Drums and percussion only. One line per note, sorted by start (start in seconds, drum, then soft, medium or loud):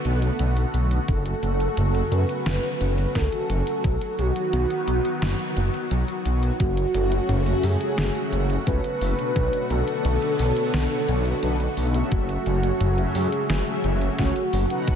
0.05 closed hi-hat medium
0.22 closed hi-hat soft
0.39 closed hi-hat medium
0.57 closed hi-hat soft
0.74 closed hi-hat medium
0.91 closed hi-hat soft
1.08 kick loud
1.08 closed hi-hat medium
1.26 closed hi-hat soft
1.43 closed hi-hat loud
1.60 closed hi-hat soft
1.77 closed hi-hat medium
1.77 mid tom medium
1.95 closed hi-hat soft
2.12 closed hi-hat medium
2.29 closed hi-hat soft
2.46 snare loud
2.46 closed hi-hat medium
2.64 closed hi-hat soft
2.81 closed hi-hat medium
2.98 closed hi-hat soft
3.15 kick loud
3.15 snare medium
3.15 closed hi-hat medium
3.32 closed hi-hat soft
3.50 closed hi-hat medium
3.67 closed hi-hat soft
3.84 kick loud
3.84 closed hi-hat medium
4.01 closed hi-hat soft
4.19 closed hi-hat medium
4.36 closed hi-hat soft
4.53 closed hi-hat medium
4.70 closed hi-hat soft
4.88 closed hi-hat medium
5.05 closed hi-hat soft
5.22 snare loud
5.22 closed hi-hat medium
5.39 closed hi-hat soft
5.57 closed hi-hat medium
5.74 closed hi-hat soft
5.91 closed hi-hat medium
6.08 closed hi-hat soft
6.26 closed hi-hat medium
6.43 closed hi-hat soft
6.60 kick loud
6.60 closed hi-hat medium
6.77 closed hi-hat soft
6.95 closed hi-hat medium
7.12 closed hi-hat soft
7.29 closed hi-hat medium
7.29 mid tom medium
7.46 closed hi-hat soft
7.63 open hi-hat medium
7.81 closed hi-hat soft
7.98 snare loud
7.98 closed hi-hat medium
8.15 closed hi-hat soft
8.32 closed hi-hat medium
8.50 closed hi-hat soft
8.67 kick loud
8.67 closed hi-hat medium
8.84 closed hi-hat soft
9.01 open hi-hat medium
9.19 closed hi-hat soft
9.36 kick loud
9.36 closed hi-hat medium
9.53 closed hi-hat soft
9.70 closed hi-hat medium
9.88 closed hi-hat soft
10.05 closed hi-hat medium
10.22 closed hi-hat soft
10.39 open hi-hat medium
10.57 closed hi-hat soft
10.74 snare loud
10.74 closed hi-hat medium
10.91 closed hi-hat soft
11.08 closed hi-hat medium
11.26 closed hi-hat soft
11.43 closed hi-hat medium
11.60 closed hi-hat soft
11.77 open hi-hat medium
11.94 closed hi-hat soft
12.12 kick loud
12.12 closed hi-hat medium
12.29 closed hi-hat soft
12.46 closed hi-hat medium
12.63 closed hi-hat soft
12.81 closed hi-hat medium
12.81 mid tom medium
12.98 closed hi-hat soft
13.15 open hi-hat medium
13.32 closed hi-hat soft
13.50 snare loud
13.50 closed hi-hat medium
13.67 closed hi-hat soft
13.84 closed hi-hat medium
14.01 closed hi-hat soft
14.19 kick loud
14.19 snare medium
14.19 closed hi-hat medium
14.36 closed hi-hat soft
14.53 open hi-hat medium
14.70 closed hi-hat soft
14.88 kick loud
14.88 closed hi-hat medium